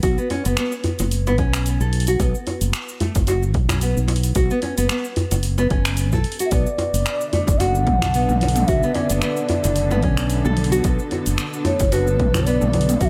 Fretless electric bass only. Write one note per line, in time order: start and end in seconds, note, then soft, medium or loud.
0.03 0.16 B1 loud
0.46 0.56 F#1 medium
1.00 1.39 F#1 medium
1.39 1.77 B1 medium
1.80 2.17 B1 medium
2.20 2.33 B1 loud
2.61 2.72 F#1 medium
3.16 3.55 F#1 medium
3.55 3.93 B1 medium
3.97 4.33 B1 medium
4.36 4.49 B1 loud
4.78 4.88 F#1 medium
5.32 5.68 F#1 medium
5.71 6.13 F#1 medium
6.13 6.23 B1 medium
6.52 6.65 B1 medium
6.93 7.04 F#1 medium
7.48 7.87 F#1 medium
7.87 8.26 B1 medium
8.29 8.65 B1 medium
8.68 8.81 B1 medium
9.10 9.21 F#1 medium
9.65 10.03 F#1 medium
10.03 10.42 B1 medium
10.45 10.82 B1 medium
10.85 10.97 B1 loud
11.27 11.37 F#1 medium
11.81 12.20 F#1 medium
12.20 12.58 B1 medium
12.62 12.98 B1 medium
13.01 13.10 B1 loud